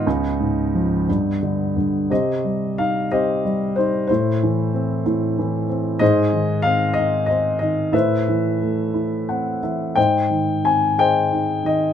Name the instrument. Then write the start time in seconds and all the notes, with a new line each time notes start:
grand piano
Already playing: B3 D#4
0.07 C#2
0.40 G#2
0.75 F3
1.09 G2
1.43 D3
1.76 G2
2.10 C3 G4 C5 D#5
2.45 G3
2.78 D#4 F5
3.11 C3 G4 C5 D#5
3.45 G3
3.76 D#4 C5
4.07 A2 E4 C5
4.43 E3
4.74 C4
5.06 A2
5.39 E3
5.69 C4
5.99 G#2 G#4 C5 D#5
6.33 D#3
6.62 C4 F5
6.94 D#4 D#5
7.26 C4 D#5
7.59 D#3 D#5
7.92 A2 B4 C5 E5
8.28 E3
8.61 A3
8.94 E4
9.29 C4 F#5
9.63 E3 E5
9.96 G#2 C5 D#5 G5
10.30 D#3
10.64 C4 G#5
10.98 G#4 C5 D#5 G5
11.32 D#4
11.64 D#3 D#5